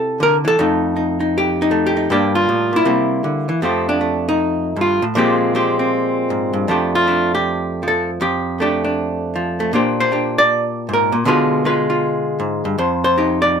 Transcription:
Already playing: C3 C4 E4 A4
0.20 D3 A#4
0.45 E3 A4
0.59 F2 A3 D#4
0.96 D#4
1.20 D#4
1.38 G4
1.62 D#4
1.71 A3
1.86 G4
1.97 D#4
2.10 G2 G3 A#3 D4 G4
2.35 F4
2.49 A2
2.73 A#2 E4
2.85 C3 G3 A#3
3.24 D3
3.49 E3
3.62 F2 F3 A3 C4 G4
3.89 D4
4.01 A3
4.29 D#4
4.76 G2
4.81 F4
5.02 A2
5.15 A#2 F3 G#3 C4 G4
5.55 G#3 C4 G4
5.79 C4
6.30 G#2
6.53 G2
6.68 F2 F3 A3 D4 G4
6.95 F4
7.08 A3 D4
7.35 G4
7.83 F3
7.88 A4
8.21 F2 G4
8.60 A3 D4 G4
8.84 D4
9.36 F3
9.60 A3
9.73 A#2 A#3 D4 G4 C5
10.00 C5
10.12 D4 G4
10.38 D5
10.89 G#2
10.93 A#4
11.12 A#2
11.25 B2 D3 G#3 F4 B4
11.65 G#3 F4 B4
11.90 F4
12.40 G#2
12.65 G2
12.78 F2 C5
13.04 C5
13.18 D#4 G4
13.42 D5

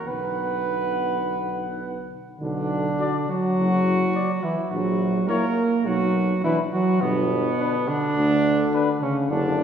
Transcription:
0.05 B1 D3 B3 B4 F#5
2.41 B1 D3 D4
2.99 F#4 D5
3.30 F#3 F#4
3.58 F#1
4.14 F#4 D5
4.43 E3 E4
4.71 A#1 F#3 F#4
5.28 A#3 E4 A#4 C#5
5.85 B1 F#3 F#4
6.44 E3 D4 E4 B4
6.73 F#3 F#4
7.01 G1 B2 B3
7.59 D4 B4
7.88 D3 D4
8.17 D2
8.74 D4 B4
9.02 C#3 C#4
9.29 F#1 D3 D4

